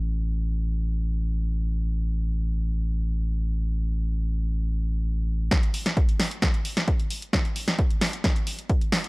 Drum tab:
HH |----------------|----------------|----------------|xxoxxxoxxxoxxxox|
SD |----------------|----------------|----------------|o--o--o-o--o----|
BD |----------------|----------------|----------------|o---o---o---o---|

HH |xxoxxxoxxxoxxxox|
SD |o--o--o-o-----o-|
BD |o---o---o---o---|